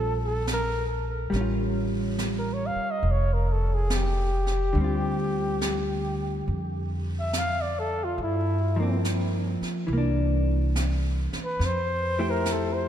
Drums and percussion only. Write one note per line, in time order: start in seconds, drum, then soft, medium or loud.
0.47 snare soft
0.47 hi-hat pedal medium
1.33 brush sweep soft
1.33 snare soft
2.18 snare soft
2.18 hi-hat pedal soft
3.04 brush sweep soft
3.90 snare soft
3.90 hi-hat pedal soft
4.47 snare soft
4.75 brush sweep soft
5.61 snare soft
5.61 hi-hat pedal medium
6.48 brush sweep soft
7.33 snare soft
7.33 hi-hat pedal medium
8.19 brush sweep soft
9.05 snare soft
9.05 hi-hat pedal medium
9.62 snare soft
9.91 brush sweep soft
10.76 snare soft
10.76 hi-hat pedal soft
11.33 snare soft
11.61 brush sweep soft
11.61 snare soft
12.46 snare soft
12.46 hi-hat pedal medium